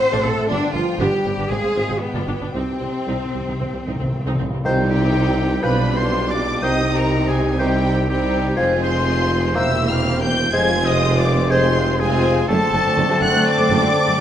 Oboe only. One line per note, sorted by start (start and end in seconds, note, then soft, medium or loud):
4.90 5.65 G4 loud
5.64 5.96 B4 medium
5.97 6.29 C5 medium
6.30 6.62 D5 medium
6.64 6.98 D#5 loud
6.96 7.30 A#4 loud
7.28 7.58 G#4 medium
7.59 8.07 G4 medium
8.09 8.57 G4 medium
8.82 9.57 C5 loud
9.55 9.90 E5 loud
9.88 10.20 F5 medium
10.20 10.54 G5 loud
10.53 10.87 G#5 loud
10.85 11.18 D#5 loud
11.18 11.52 D5 medium
11.51 12.01 C5 loud
12.00 12.48 G#4 medium
12.48 13.24 A4 loud
13.22 13.45 F#5 loud
13.46 14.20 D5 loud